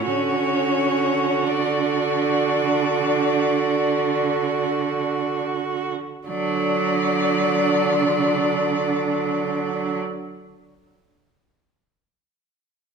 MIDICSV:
0, 0, Header, 1, 5, 480
1, 0, Start_track
1, 0, Key_signature, 2, "major"
1, 0, Tempo, 500000
1, 12431, End_track
2, 0, Start_track
2, 0, Title_t, "Violin"
2, 0, Program_c, 0, 40
2, 55, Note_on_c, 0, 73, 60
2, 1407, Note_on_c, 0, 74, 47
2, 1422, Note_off_c, 0, 73, 0
2, 5219, Note_off_c, 0, 74, 0
2, 6046, Note_on_c, 0, 74, 58
2, 9587, Note_off_c, 0, 74, 0
2, 12431, End_track
3, 0, Start_track
3, 0, Title_t, "Violin"
3, 0, Program_c, 1, 40
3, 58, Note_on_c, 1, 61, 51
3, 1409, Note_on_c, 1, 62, 36
3, 1424, Note_off_c, 1, 61, 0
3, 5220, Note_off_c, 1, 62, 0
3, 6040, Note_on_c, 1, 62, 47
3, 9580, Note_off_c, 1, 62, 0
3, 12431, End_track
4, 0, Start_track
4, 0, Title_t, "Viola"
4, 0, Program_c, 2, 41
4, 47, Note_on_c, 2, 66, 37
4, 5685, Note_off_c, 2, 66, 0
4, 6037, Note_on_c, 2, 54, 42
4, 9577, Note_off_c, 2, 54, 0
4, 12431, End_track
5, 0, Start_track
5, 0, Title_t, "Cello"
5, 0, Program_c, 3, 42
5, 53, Note_on_c, 3, 50, 43
5, 5726, Note_off_c, 3, 50, 0
5, 6032, Note_on_c, 3, 50, 46
5, 9573, Note_off_c, 3, 50, 0
5, 12431, End_track
0, 0, End_of_file